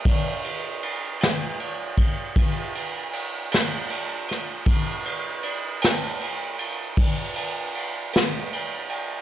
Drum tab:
RD |xxxxxxxxxxxx|xxxxxxxxxxxx|
SD |---o-----o-o|---o-----o--|
BD |o----oo-----|o-----o-----|